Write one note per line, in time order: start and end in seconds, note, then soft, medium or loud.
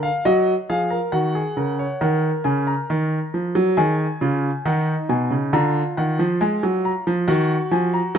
0.03 0.24 F5 medium
0.25 0.52 F#3 medium
0.25 0.52 F#4 medium
0.25 0.52 D#5 medium
0.69 0.97 F3 medium
0.69 0.91 G#4 medium
0.69 0.97 F5 medium
0.90 1.12 A#4 medium
1.12 1.40 D#3 medium
1.12 1.34 F#4 medium
1.12 1.98 F#5 medium
1.35 1.56 G#4 medium
1.57 1.84 C#3 medium
1.57 1.79 A#4 medium
1.79 2.01 C#5 medium
2.01 2.29 D#3 medium
2.01 3.74 A#4 medium
2.01 2.29 F#5 medium
2.44 2.72 C#3 medium
2.44 2.66 G#5 medium
2.67 3.74 A#5 medium
2.90 3.17 D#3 medium
3.34 3.55 F3 medium
3.55 3.77 F#3 medium
3.77 4.05 D#3 medium
3.77 4.05 G#4 medium
3.77 4.63 G#5 medium
4.21 4.49 C#3 medium
4.21 4.49 F4 medium
4.65 4.93 D#3 medium
4.65 5.51 D#4 medium
4.65 4.93 F#5 medium
5.09 5.31 B2 medium
5.09 5.37 G#5 medium
5.31 5.52 C#3 medium
5.53 5.80 D3 medium
5.53 7.25 F4 medium
5.53 5.81 A#5 medium
5.97 6.19 D#3 medium
5.97 6.25 F#5 medium
6.19 6.41 F3 medium
6.41 6.62 G#3 medium
6.41 6.68 G#5 medium
6.63 6.90 F#3 medium
6.85 7.12 A#5 medium
7.07 7.28 F3 medium
7.28 7.55 D#3 loud
7.28 8.13 F#4 medium
7.28 7.55 F#5 medium
7.71 7.99 F3 medium
7.71 7.93 G#5 medium
7.94 8.15 A#5 medium
8.15 8.18 F#3 loud